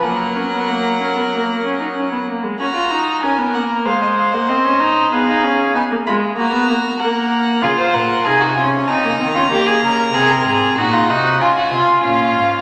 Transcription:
<<
  \new Staff \with { instrumentName = "Violin" } { \time 4/4 \key fis \major \tempo 4 = 95 fis''2.~ fis''8 r8 | ais''4 gis''8 fis''8 eis''16 dis''16 eis''16 fis''16 dis''4 | eis''4 gis''8 b''8 ais''4 fis''4 | eis''8 fis''8 gis''4 ais''2~ |
ais''4 fis''4 gis''4 eis''4 | }
  \new Staff \with { instrumentName = "Violin" } { \time 4/4 \key fis \major ais'2.~ ais'8 r8 | fis'4 ais'4 bis'2 | gis'4 dis'8 eis'8 fis'4 ais'4 | gis'16 bis'16 ais'8 gis'16 fis'16 eis'8 dis'8. eis'16 g'16 gis'16 ais'8 |
gis'16 ais'16 gis'8 fis'16 eis'16 dis'8 eis'16 fis'16 eis'8 eis'4 | }
  \new Staff \with { instrumentName = "Viola" } { \time 4/4 \key fis \major ais8 cis'16 b16 ais8 cis'16 b16 ais8 cis'16 dis'16 cis'16 b16 ais16 gis16 | cis'16 eis'16 dis'8 cis'16 b16 ais8 gis8. ais16 bis16 cis'16 dis'8 | b16 dis'16 cis'8 b16 ais16 gis8 ais16 b16 ais8 ais4 | eis'4 dis'8 cis'8 bis16 ais16 bis16 cis'16 ais4 |
bis4 dis'8 fis'8 eis'4 cis'4 | }
  \new Staff \with { instrumentName = "Cello" } { \clef bass \time 4/4 \key fis \major fis2.~ fis8 r8 | r1 | r1 | cis8 ais,8 bis,4 cis8 dis8 dis8 cis8 |
bis,8 gis,8 ais,8 bis,8 cis8 bis,8 ais,8 gis,8 | }
>>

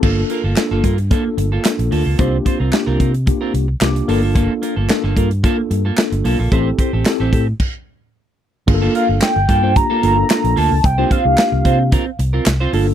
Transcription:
<<
  \new Staff \with { instrumentName = "Soft synth lead" } { \time 4/4 \key g \minor \tempo 4 = 111 r1 | r1 | r1 | r1 |
r8 f''8 g''4 bes''4. a''8 | g''8 f''2 r4. | }
  \new Staff \with { instrumentName = "Clean electric guitar" } { \time 4/4 \key g \minor <bes f' a'>16 r16 <bes f' bes'>16 <bes f' a'>16 r16 <bes f' a'>16 <bes f' bes'>16 r16 <bes f' a'>16 r8 <bes f' a'>16 r8 <bes f' a'>16 <bes f' a'>16 | <c' f' c''>16 r16 <c' f' c''>16 <c' f' bes'>16 r16 <c' f' bes'>16 <c' f' bes'>16 r8 <c' f' bes'>16 r4 <bes f' a'>16 <bes f' a'>16 | <bes f' a'>16 r16 <bes f' bes'>16 <bes f' a'>16 r16 <bes f' a'>16 <bes f' bes'>16 r16 <bes f' a'>16 r8 <bes f' a'>16 r8 <bes f' a'>16 <bes f' a'>16 | <c' g' c''>16 r16 <c' g' c''>16 <c' g' a'>16 r16 <c' g' a'>16 <c' g' a'>16 r2 r16 |
r16 <bes f' a'>16 <bes f' bes'>16 r8. <bes f' a'>16 <bes f' a'>16 r16 <bes f' a'>16 <bes f' a'>16 r8. <bes f' a'>16 r16 | r16 <c' f' c''>16 <c' f' c''>16 r8. <c' f' c''>16 r16 <c' f' bes'>16 r8 <c' f' bes'>16 r16 <c' f' c''>16 <bes f' a'>16 r16 | }
  \new Staff \with { instrumentName = "Tine electric piano" } { \time 4/4 \key g \minor << { r1 | r2. d'''4 | r1 | r1 |
r1 | r1 | } \\ { <bes d' f' a'>8. r16 <bes d' f' a'>8. r16 <bes d' f' a'>8. r16 <bes d' f' a'>8. r16 | <bes d' f' g'>8. r16 <bes d' f' g'>8. r16 <bes d' f' g'>8. r16 <bes d' f' g'>8 <bes d' f' a'>8~ | <bes d' f' a'>8. r16 <bes d' f' a'>8. r16 <bes d' f' a'>8. r16 <bes d' f' a'>8. r16 | <c' e' g' a'>8. r16 <c' e' g' a'>8. r2 r16 |
<bes d' f' aes' a'>4~ <bes d' f' aes' a'>16 r8 <bes d' f' c''>16 <d' f' g'>16 r16 <bes d' f' a'>16 <bes d' f' a'>16 <bes d' f' a'>8. r16 | r16 <bes d' f' g'>16 r16 <bes d' e' f' g'>4. r4 r16 <bes d' f' a'>8 | } >> }
  \new Staff \with { instrumentName = "Fingered electric bass" } { \clef bass \time 4/4 \key g \minor g,,8 r16 g,,16 r16 g,,16 g,8. r16 g,,8 r16 bes,,16 d,16 cis,16 | c,8 r16 c,16 r16 c,16 c8. r16 c,8 c,8 g,,8~ | g,,8 r16 g,,16 r16 g,,16 g,8. r16 g,8 r16 g,,16 b,,16 bes,,16 | a,,8 r16 a,,16 r16 a,,16 a,8 r2 |
g,,8 r16 g,,16 r16 g,,16 g,8. r16 g,,8 r16 bes,,16 d,16 cis,16 | c,8 r16 c,16 r16 c,16 c8. r16 c,8 c,8 g,,8 | }
  \new DrumStaff \with { instrumentName = "Drums" } \drummode { \time 4/4 <cymc bd>8 hh8 <hc hh sn>8 <hh bd>16 hh16 <hh bd>8 hh8 <hc hh sn>16 hh16 hho8 | <hh bd>8 <hh bd>8 <hc hh sn>8 <hh bd>16 hh16 <hh bd>8 hh8 <hc hh sn>16 hh16 hho8 | <hh bd>8 hh8 <hc hh sn>8 <hh bd>16 hh16 <hh bd>8 hh8 <hc hh sn>16 hh16 hho8 | <hh bd>8 <hh bd>8 <hc hh sn>8 <hh bd>8 <cymc bd>4 r4 |
<cymc bd>8 hh8 <hc hh sn>8 <hh bd>8 <hh bd>8 hh8 <hc hh sn>16 hh16 hho8 | <hh bd>8 <hh bd>8 <hc hh sn>8 <hh bd>8 <hh bd>8 hh8 <hc hh sn>8 hho8 | }
>>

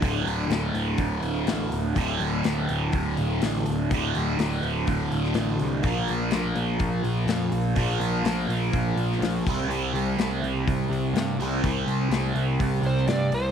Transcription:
<<
  \new Staff \with { instrumentName = "Electric slide guitar" } { \time 4/4 \key d \minor \tempo 4 = 124 r1 | r1 | r1 | r1 |
r1 | r1 | r2 r8 c''8 d''8 c''8 | }
  \new Staff \with { instrumentName = "Overdriven electric guitar" } { \clef bass \time 4/4 \key d \minor <d, a, d>1 | <d, a, d>1 | <d, a, d>1 | <bes, f bes>1 |
<bes, f bes>2.~ <bes, f bes>8 <c g c'>8~ | <c g c'>2.~ <c g c'>8 <c g c'>8~ | <c g c'>2.~ <c g c'>8 r8 | }
  \new Staff \with { instrumentName = "Picked electric bass" } { \clef bass \time 4/4 \key d \minor d,,8 d,,8 d,,8 d,,8 d,,8 d,,8 a,,8 d,,8 | d,,8 d,,8 d,,8 d,,8 d,,8 d,,8 a,,8 d,,8 | d,,8 d,,8 d,,8 d,,8 d,,8 d,,8 a,,8 c,8 | bes,,8 bes,,8 bes,,8 bes,,8 bes,,8 bes,,8 f,8 bes,,8 |
bes,,8 bes,,8 bes,,8 bes,,8 bes,,8 bes,,8 bes,,8 c,8 | c,8 c,8 c,8 c,8 c,8 c,8 g,8 c,8 | c,8 c,8 c,8 c,8 c,8 c,8 g,8 c,8 | }
  \new DrumStaff \with { instrumentName = "Drums" } \drummode { \time 4/4 <hho bd>8 hho8 <hho sn>8 hho8 <hho bd>8 hho8 <hho sn>8 hho8 | <hho bd>8 hho8 <hho sn>8 hho8 <hho bd>8 hho8 <hho sn>8 hho8 | <hho bd>8 hho8 <hho sn>8 hho8 <hho bd>8 hho16 sn16 <hho sn>8 hho8 | <hho bd>8 hho8 <hho sn>8 hho8 <hho bd>8 hho8 <hho sn>8 hho8 |
<hho bd>8 hho8 <hho sn>8 hho8 <hho bd>8 hho16 sn16 <hho sn>8 <hho bd>8 | hho8 hho8 <hho sn>8 hho8 <hho bd>8 hho8 <hho sn>8 hho8 | <hho bd>8 hho8 <hho sn>8 hho8 <hho bd>8 hho16 sn16 <hho sn>8 hho8 | }
>>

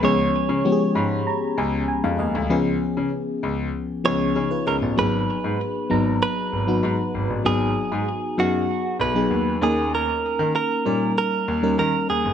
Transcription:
<<
  \new Staff \with { instrumentName = "Clean electric guitar" } { \time 4/4 \key gis \minor \tempo 4 = 97 cis''2. r4 | r2 r8 cis''4 ais'8 | b'2 b'2 | gis'4. fis'4 b'4 gis'8 |
ais'4 ais'4 ais'4 ais'8 gis'8 | }
  \new Staff \with { instrumentName = "FM electric piano" } { \time 4/4 \key gis \minor << { r4. b''8 ais''8 gis''8 gis''16 eis''16 dis''8 | r2. <dis' gis'>16 <eis' b'>16 <gis' cis''>16 <b eis'>16~ | <b eis'>16 r2. r8. | r1 |
r1 | } \\ { <eis gis b cis' gis'>8. r16 <eis gis b cis' g' gis'>4~ <eis gis b cis' g' gis'>16 r4. r16 | <eis b cis' gis'>4~ <eis b cis' gis'>16 r4 r16 <eis b cis' gis'>4 r8 | <fis ais b dis' gis'>4 r8 <fis b dis' ais''>8. r8 <fis b dis' fis'>8. r8 | <fis b dis' gis'>4 r8 <fis b dis' gis'>8. r8 <fis b dis' gis'>8. <ais cis' dis' ais'>8~ |
<ais cis' dis' ais'>4 r8 <g cis' dis' ais'>8. r8 <g cis' dis' ais'>8. r8 | } >> }
  \new Staff \with { instrumentName = "Grand piano" } { \clef bass \time 4/4 \key gis \minor cis,8 r16 cis16 r8 gis,8 r8 cis,8 r16 eis,16 dis,16 d,16 | cis,8 r16 cis16 r8 cis,8 r8 cis,8 cis16 r16 cis,16 a,,16 | gis,,8 r16 gis,16 r8 gis,,8 r8 gis,,8 gis,16 r16 gis,,16 a,,16 | gis,,8 r16 gis,16 r8 fis,8 r8 b,,8 dis,8 dis,8~ |
dis,8 r16 dis16 r8 ais,8 r8 dis,8 dis16 r16 dis,16 g,,16 | }
>>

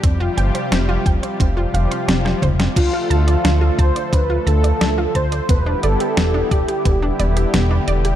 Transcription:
<<
  \new Staff \with { instrumentName = "Supersaw synth" } { \time 4/4 \key d \dorian \tempo 4 = 88 r1 | f'4. c''8 b'8 a'4 c''8 | b'8 a'4 g'4 r4. | }
  \new Staff \with { instrumentName = "Synth arpeggio sound" } { \time 4/4 \key d \dorian c'16 f'16 g''16 c''16 c'16 f'16 g''16 c''16 c'16 f'16 f''16 c'''16 c'16 g'16 c''16 c'16 | d'16 f'16 a''16 d''16 d'16 f'16 a''16 d''16 d'16 f'16 a''16 d''16 d'16 f'16 a''16 d''16 | b16 d'16 d''16 g'16 b16 d'16 d''16 g'16 b16 d'16 d''16 g'16 b16 d'16 d''16 g'16 | }
  \new Staff \with { instrumentName = "Analog synth pad" } { \time 4/4 \key d \dorian << { <c g g'>1 | <d a a'>1 | <d b g'>1 | } \\ { <f f'>1~ | <f f'>1 | <g e'>1 | } >> }
  \new Staff \with { instrumentName = "Analog synth bass" } { \clef bass \time 4/4 \key d \dorian f,,8 g,,8 f,,8 f,,8 f,,8 f,,8 f,,8 f,,8 | d,8 d,8 d,8 d,8 d,8 d,8 d,8 d,8 | e,,8 g,,8 e,,8 e,,8 e,,8 e,,8 e,,8 e,,8 | }
  \new DrumStaff \with { instrumentName = "Drums" } \drummode { \time 4/4 <hh bd>8 hh16 hh16 <hh sn>8 <hh bd>16 hh16 <hh bd>8 hh16 hh16 <hh sn>16 sn16 <hh bd toml>16 <hh sn>16 | <cymc hh bd>8 hh16 hh16 <hh sn>8 <hh bd>16 hh16 <hh bd>8 hh16 hh16 <hh sn>8 <hh bd>16 hh16 | <hh bd>8 hh16 hh16 <hh sn>8 <hh bd>16 hh16 <hh bd>8 hh16 hh16 <hh sn>8 hh16 hh16 | }
>>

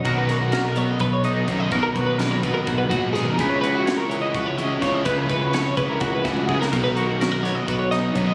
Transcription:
<<
  \new Staff \with { instrumentName = "Clean electric guitar" } { \time 7/8 \key b \major \tempo 4 = 126 fis'16 b'16 ais'16 fis'8 ais'16 cis''16 dis''16 b'16 cis''16 dis''8 cis''16 dis''16 | b'16 ais'16 b'16 b'8 cis''16 b'16 ais'16 fis'16 b'16 fis'8 gis'16 ais'16 | gis'16 cis''16 b'16 fis'8 ais'16 cis''16 dis''16 b'16 cis''16 dis''8 cis''16 dis''16 | b'16 ais'16 b'16 b'8 cis''16 b'16 ais'16 fis'16 b'16 fis'8 gis'16 ais'16 |
fis'16 b'16 ais'16 fis'8 ais'16 cis''16 dis''16 b'16 cis''16 dis''8 cis''16 dis''16 | }
  \new Staff \with { instrumentName = "Clean electric guitar" } { \time 7/8 \key b \major << { ais'8 fis'8 ais'4 fis'8 dis'4 | ais'8 fis'8 ais'2~ ais'8 | b'8 fis'8 cis''4 fis'4. | b'8 fis'8 cis''4 fis'4. |
ais'8 fis'8 ais'4 fis'8 dis'4 | } \\ { b,4. b4. fis,8 | b,4. b8 gis,8 ais,8 b,8 | cis4. e4. cis8 | cis4. e4. cis8 |
b,4. b4. fis,8 | } >> }
  \new Staff \with { instrumentName = "Overdriven electric guitar" } { \time 7/8 \key b \major <b, dis fis b dis'>4 <dis fis b dis'>8 <fis b dis'>4 <fis b dis'>8 <b, dis fis b dis'>8 | <b, dis fis b dis'>4 <dis fis b dis'>8 <fis b dis'>4 <fis b dis'>8 <b, dis fis b dis'>8 | <cis gis cis' e'>4 <cis gis cis' e'>8 <gis cis' e'>4 <gis cis' e'>8 <cis gis cis' e'>8 | <cis gis cis' e'>4 <cis gis cis' e'>8 <gis cis' e'>4 <gis cis' e'>8 <cis gis cis' e'>8 |
<b, dis fis b dis'>4 <dis fis b dis'>8 <fis b dis'>4 <fis b dis'>8 <b, dis fis b dis'>8 | }
  \new Staff \with { instrumentName = "Fingered electric bass" } { \clef bass \time 7/8 \key b \major b,,2 b,,4 b,,8 | b,,8 b,,4 b,16 r16 b,,8 gis,4 | cis,2 cis,4 cis,8 | cis,8 cis,4 cis16 r16 cis,8 cis,4 |
b,,2 b,,4 b,,8 | }
  \new DrumStaff \with { instrumentName = "Drums" } \drummode { \time 7/8 <hh bd>8 <hh sn>8 <hh sn>8 hh8 <hh bd>8 hh8 <hh bd>8 | <hh bd>8 <hh bd>8 <hh sn>8 <hh bd>8 <hh bd>8 <hh bd>8 <hh sn>8 | <hh bd>8 hh8 <hh sn>8 hh8 <hh bd>8 hh8 <hh bd sn>8 | <hh bd>8 <hh bd>8 <hh sn>8 <hh bd>8 <hh bd>8 <hh bd sn>16 tommh16 bd16 sn16 |
<cymc hh bd>8 hh8 <hh sn>8 <hh sn>8 <hh bd>8 <hh sn>8 <hh bd>8 | }
>>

